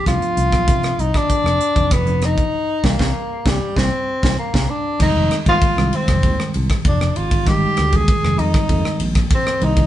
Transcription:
<<
  \new Staff \with { instrumentName = "Tenor saxophone" } { \time 4/4 \key c \dorian \tempo 4 = 97 f'4. ees'16 d'4~ d'16 b8 ees'8~ | ees'8 bes4 g8 c'4 bes8 d'8 | \key f \dorian ees'8. f'8. c'4 r8 d'8 f'8 | g'8. aes'8. ees'4 r8 c'8 ees'8 | }
  \new Staff \with { instrumentName = "Tine electric piano" } { \clef bass \time 4/4 \key c \dorian <f a b d'>4. r4. r16 <f a b d'>8 r16 | r8 <g bes c'>16 <g bes c'>16 r8 <g bes c'>16 r16 <g bes c'>16 r8 <g bes c'>16 r16 <g bes c'>16 r8 | \key f \dorian <ees g aes c'>8 r16 <ees g aes bes>8 <ees g aes c'>4. r4 r16 | <ees g aes ees'>8 r16 <ees g aes bes>8 <ees g aes c'>4. r8. <ees g bes d''>8 | }
  \new Staff \with { instrumentName = "Fretless electric bass" } { \clef bass \time 4/4 \key c \dorian c,16 r16 c,16 b,,16 c8 c,16 r8 f,,16 r16 f,,4~ f,,16 | r8 c,16 c,16 r8 c,16 r16 c,16 r8 c,16 r16 c,16 r8 | \key f \dorian f,,16 f,,16 r16 aes,,16 r16 c,16 r16 f,,16 ees,16 r16 c,16 r16 f,,8 aes,,8~ | aes,,8 d,8 r16 f,,16 f,16 r16 f,16 r16 bes,,8 r8 c,8 | }
  \new DrumStaff \with { instrumentName = "Drums" } \drummode { \time 4/4 <hh bd ss>16 hh16 hh16 <hh bd ss>16 <hh bd>16 <hh ss>16 hh16 <bd ss>16 <hh bd>16 ss16 hh16 <hh bd>16 <hh bd ss>16 hh16 <hh ss>16 <hh bd>16 | r8 <bd sn>16 <bd sn>16 r8 <bd sn>8 <bd sn>8. <bd sn>16 r16 <bd sn>8. | <cymc bd ss>8 <cymr ss>16 <bd cymr>16 <bd cymr>16 ss16 cymr16 <bd cymr ss>16 <bd cymr>16 ss16 cymr16 <bd cymr ss>16 <bd cymr>16 ss16 cymr16 <bd cymr>16 | <bd cymr ss>8 <cymr ss>16 <bd cymr>16 <bd cymr>16 ss16 cymr16 <bd cymr ss>16 <bd cymr>16 ss16 cymr16 <bd cymr ss>16 <bd cymr>16 ss16 cymr16 <bd cymr>16 | }
>>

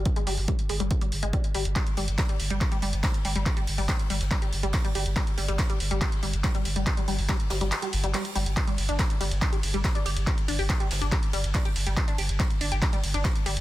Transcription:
<<
  \new Staff \with { instrumentName = "Synth arpeggio sound" } { \clef bass \time 4/4 \key c \minor \tempo 4 = 141 r16 aes16 g16 r16 g16 r16 aes16 g16 r16 g16 r16 aes16 g16 r16 g16 r16 | g16 r16 g16 r16 g16 g16 r16 g16 r16 g16 g16 r16 g16 r16 g16 g16 | r16 g16 r16 g16 g16 r16 g16 r16 g16 g16 r16 g16 r16 g16 g16 r16 | g16 r16 g16 g16 r16 g16 r16 g16 g16 r16 g16 r16 g16 g16 r16 g16 |
r16 g16 g16 r16 g16 r16 g16 g16 r16 g16 r16 g16 g16 r16 g16 r16 | r16 g16 r16 d'16 g'16 r16 g16 r16 d'16 g'16 r16 g16 r16 d'16 g'16 r16 | g16 r16 d'16 g'16 r16 g16 r16 d'16 g'16 r16 g16 r16 d'16 g'16 r16 g16 | r16 d'16 g'16 r16 g16 r16 d'16 g'16 r16 g16 r16 d'16 g'16 r16 g16 r16 | }
  \new Staff \with { instrumentName = "Sub bass" } { \clef bass \time 4/4 \key c \minor r8 g,,16 g,,16 r8 g,,16 g,,16 r8 g,,16 g,,16 r8 g,,16 g,,16 | r8 g,,16 g,,16 r8 g,,16 g,,16 r8 g,,16 g,,16 r8 g,,16 g,,16 | r8 g,,16 g,,16 r8 g,,16 g,,16 r8 g,,16 g,,16 r8 g,,16 g,,16 | r8 g,,16 g,,16 r8 g,,16 g,,16 r8 g,,16 g,,16 r8 g,,16 g,,16 |
r8 g,,16 g,,16 r8 g,,16 g,,16 r8 g,,16 g,,16 r8 g,,16 g,,16 | r8 g,,16 g,,16 r8 g,,16 g,,16 r8 g,,16 g,,16 r8 g,,16 g,,16 | r8 g,,16 g,,16 r8 g,,16 g,,16 r8 g,,16 g,,16 r8 g,,16 g,,16 | r8 g,,16 g,,16 r8 g,,16 g,,16 r8 g,,16 g,,16 r8 g,,16 g,,16 | }
  \new DrumStaff \with { instrumentName = "Drums" } \drummode { \time 4/4 <hh bd>16 hh16 hho16 hho16 <hh bd>16 hh16 hho16 hh16 <hh bd>16 hh16 hho16 hh16 <hh bd>16 hh16 hho16 hh16 | <hc hh bd cymr>16 hh16 <hho cymr>16 hh16 <hc hh bd cymr sn>16 hh16 <hho cymr>16 hh16 <hc hh bd cymr>16 hh16 <hho cymr>16 <hh cymr>16 <hc hh bd cymr sn>16 <hh cymr>16 <hho cymr>16 hh16 | <hc hh bd cymr>16 <hh cymr>16 <hho cymr>16 hho16 <hc hh bd cymr sn>16 hh16 <hho cymr>16 <hh sn>16 <hc hh bd cymr>16 <hh cymr>16 <hho cymr>16 hh16 <hc hh hho bd sn>16 hh16 <hho cymr>16 hh16 | <hc hh bd cymr>16 hh16 <hho cymr>16 hh16 <hc hh bd cymr sn>16 hh16 <hho cymr>16 hh16 <hc hh bd cymr>16 hh16 <hho cymr>16 <hh cymr>16 <hc hh bd cymr sn>16 <hh cymr>16 <hho cymr>16 hh16 |
<hc hh bd cymr>16 <hh cymr>16 <hho cymr>16 hho16 <hc hh bd cymr sn>16 hh16 <hho cymr sn>16 <hh sn>16 <hc hh cymr sn>16 <hh cymr>16 <hho cymr>16 hh16 <hc hh hho sn>16 hh16 <hho cymr>16 hh16 | <hc hh bd cymr>16 hh16 <hho cymr>16 hh16 <hc hh bd cymr sn>16 hh16 <hho cymr>16 hh16 <hc hh bd cymr>16 hh16 <hho cymr>16 <hh cymr>16 <hc hh bd cymr sn>16 <hh cymr>16 <hho cymr>16 hh16 | <hc hh bd cymr>16 <hh cymr>16 <hho cymr>16 hho16 <hc hh bd cymr sn>16 hh16 <hho cymr sn>16 <hh sn>16 <hc hh bd cymr>16 <hh cymr>16 <hho cymr>16 hh16 <hc hh hho bd cymr sn>16 hh16 <hho cymr>16 hh16 | <hc hh bd cymr>16 hh16 <hho cymr>16 hh16 <hc hh bd cymr sn>16 hh16 <hho cymr>16 hh16 <hc hh bd cymr>16 hh16 <hho cymr>16 <hh cymr>16 <hc hh bd cymr sn>16 <hh cymr>16 <hho cymr>16 hh16 | }
>>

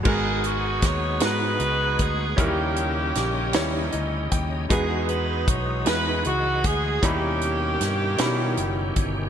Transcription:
<<
  \new Staff \with { instrumentName = "Saxophone section" } { \time 6/8 \key gis \minor \tempo 4. = 52 << { gis'8 fis'8 cis''8 b'4 gis'8 | g'2 r4 | gis'8 b'8 cis''8 b'8 fis'8 gis'8 | g'2~ g'8 r8 | } \\ { <b dis'>4. <dis' fis'>4. | <ais cis'>2 r4 | <b dis'>4. r4. | <ais cis'>2~ <ais cis'>8 r8 | } >> }
  \new Staff \with { instrumentName = "Grand piano" } { \time 6/8 \key gis \minor <gis b dis' fis' ais'>4 r8 <gis b dis' fis' ais''>4 r8 | <e g cis' dis' e' ais'>4 r8 <g cis' dis' e' cis''>4 r8 | <gis dis' fis' gis' b'>4 r8 <gis dis' e' fis' b'>4 r8 | <g cis' dis' e' b''>4 r8 <fis g cis' dis' e' b''>4 r8 | }
  \new Staff \with { instrumentName = "Grand piano" } { \clef bass \time 6/8 \key gis \minor gis,4. r4. | dis4. r8 dis''8 g''8 | e4. r4. | dis4. r4. | }
  \new Staff \with { instrumentName = "Tonewheel organ" } { \time 6/8 \key gis \minor <gis b fis' gis' a'>2. | <cis cis' g' dis''>2. | <e gis fis' dis''>2. | <b, dis cis' g'>2. | }
  \new Staff \with { instrumentName = "Fingered electric bass" } { \clef bass \time 6/8 \key gis \minor gis,,4 dis,8 gis,8 cis,8 d,8 | dis,4 ais,,8 dis,8 d,8 dis,8 | e,4 b,,8 e,8 cis,8 d,8 | dis,4 g,8 b,8 fis,,8 g,,8 | }
  \new DrumStaff \with { instrumentName = "Drums" } \drummode { \time 6/8 <cymc bd>8 hh8 <hh bd sn>8 <hh sn>8 hh8 <hh bd>8 | <hh bd>8 hh8 <hh sn>8 <hh sn>8 hh8 <hh bd>8 | <hh bd>8 hh8 <hh bd>8 <hh sn>8 hh8 <hh bd>8 | <hh bd>8 hh8 <hh sn>8 <hh sn>8 hh8 <hh bd>8 | }
>>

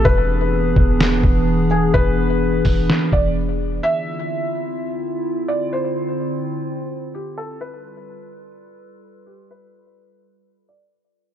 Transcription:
<<
  \new Staff \with { instrumentName = "Felt piano" } { \time 4/4 \key d \dorian \tempo 4 = 127 b'2.~ b'8 gis'8 | b'2~ b'8 d''8 r4 | e''2.~ e''8 d''8 | c''2. g'8 a'8 |
b'2.~ b'8 g'8 | b'2~ b'8 d''8 r4 | }
  \new Staff \with { instrumentName = "Ambient pad" } { \time 4/4 \key d \dorian <e b d' gis'>1~ | <e b d' gis'>1 | <d c' e' f'>1~ | <d c' e' f'>1 |
<g f' a' b'>1~ | <g f' a' b'>1 | }
  \new Staff \with { instrumentName = "808-style bass" } { \clef bass \time 4/4 \key d \dorian e,,4. e,,4 e,,4. | e,,4. e,,8 r8 e,,4. | r1 | r1 |
r1 | r1 | }
  \new DrumStaff \with { instrumentName = "Drums" } \drummode { \time 4/4 bd4 r8 bd8 sn8 bd8 r4 | bd4 r8 <hho bd>8 sn8 bd8 r4 | r4 r4 r4 r4 | r4 r4 r4 r4 |
r4 r4 r4 r4 | r4 r4 r4 r4 | }
>>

